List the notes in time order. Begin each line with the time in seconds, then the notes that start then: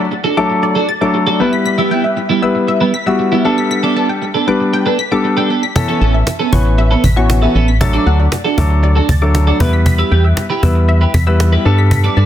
Already playing: downlifter
0.00 D5
0.11 muted clean electric guitar stroke
0.24 D4 F#4 A4
0.37 F#3 A3 D4 A4 D6, muted clean electric guitar stroke
0.50 muted clean electric guitar stroke
0.63 D5, muted clean electric guitar stroke
0.75 D4 F#4 A4
0.88 A6, muted clean electric guitar stroke
1.01 F#3 A3 D4 A4 D6, muted clean electric guitar stroke
1.14 muted clean electric guitar stroke
1.27 D4 F#4 A4 D5
1.39 G3 B3 E4 B4
1.52 B6, muted clean electric guitar stroke
1.65 B6, muted clean electric guitar stroke
1.78 G3 B3 E4 E6
1.91 G3 B3 E4 G5
2.04 E5, muted clean electric guitar stroke
2.17 muted clean electric guitar stroke
2.29 G3 B3 E4
2.42 G3 B3 E4 B4 E6, muted clean electric guitar stroke
2.55 muted clean electric guitar stroke
2.68 E5, muted clean electric guitar stroke
2.81 G3 B3 E4 B4
2.93 B6, muted clean electric guitar stroke
3.06 G3 B3 E4 F#4 E6, muted clean electric guitar stroke
3.19 muted clean electric guitar stroke
3.32 G3 B3 E4 E5
3.45 G3 B3 D4 A4
3.58 B6, muted clean electric guitar stroke
3.70 B6, muted clean electric guitar stroke
3.83 B3 D4 A4 D6
3.96 B3 D4 A4 A5
4.09 G5, muted clean electric guitar stroke
4.22 muted clean electric guitar stroke
4.34 B3 D4 A4
4.47 G3 B3 D4 B4 D6, muted clean electric guitar stroke
4.60 muted clean electric guitar stroke
4.73 G5, muted clean electric guitar stroke
4.86 B3 D4 A4 B4
4.99 B6, muted clean electric guitar stroke
5.11 G3 B3 D4 A4 D6, muted clean electric guitar stroke
5.24 muted clean electric guitar stroke
5.37 B3 D4 A4 G5
5.50 B3 D4 A4
5.63 B6, muted clean electric guitar stroke
5.75 E3 B3 C#4 A4 B6, muted clean electric guitar stroke, cajon bass
5.88 B3 C#4 A4 C#6
6.01 A1 B3 C#4 A4 A5
6.14 E5, muted clean electric guitar stroke
6.27 muted clean electric guitar stroke, cajon slap
6.39 B3 C#4 A4
6.52 A1 E3 B3 C#4 B4 C#6, muted clean electric guitar stroke, cajon bass
6.65 muted clean electric guitar stroke
6.78 E5, muted clean electric guitar stroke
6.91 B3 C#4 A4 B4
7.04 A1 B6, muted clean electric guitar stroke, cajon bass
7.16 E3 B3 C#4 F#4 C#6, muted clean electric guitar stroke
7.29 muted clean electric guitar stroke, cajon slap
7.42 B3 C#4 A4 E5
7.55 A1 B3 C#4 A4
7.68 B6, muted clean electric guitar stroke
7.80 F#3 A3 D4 A4 A6, muted clean electric guitar stroke, cajon bass
7.93 D4 F#4 A4 D6
8.06 D2 D4 F#4 A4 F#5
8.19 D5, muted clean electric guitar stroke
8.32 muted clean electric guitar stroke, cajon slap
8.44 D4 F#4 A4
8.57 D2 F#3 A3 D4 A4 D6, muted clean electric guitar stroke, cajon bass
8.70 muted clean electric guitar stroke
8.83 D5, muted clean electric guitar stroke
8.96 D4 F#4 A4
9.09 D2 A6, muted clean electric guitar stroke, cajon bass
9.22 F#3 A3 D4 A4 D6, muted clean electric guitar stroke
9.34 muted clean electric guitar stroke, cajon slap
9.47 D4 F#4 A4 D5
9.60 E2 G3 B3 E4 G4 B4, cajon bass
9.73 B6, muted clean electric guitar stroke
9.86 B6, muted clean electric guitar stroke, cajon bass
9.98 E4 G4 B4 E6
10.11 E2 E4 G4 B4 G5
10.24 E5, muted clean electric guitar stroke
10.37 muted clean electric guitar stroke, cajon slap
10.50 E4 G4 B4
10.63 E2 G3 B3 E4 B4 E6, muted clean electric guitar stroke, cajon bass
10.75 muted clean electric guitar stroke
10.88 E5, muted clean electric guitar stroke
11.01 E4 G4 B4
11.14 E2 B6, muted clean electric guitar stroke, cajon bass
11.27 G3 B3 E4 B4 E6, muted clean electric guitar stroke
11.40 muted clean electric guitar stroke, cajon slap
11.52 E4 G4 B4 E5
11.65 G2 G3 B3 D4 A4 B4
11.78 B6, muted clean electric guitar stroke
11.91 B6, muted clean electric guitar stroke, cajon bass
12.04 D4 A4 B4 D6
12.17 G2 D4 A4 B4 A5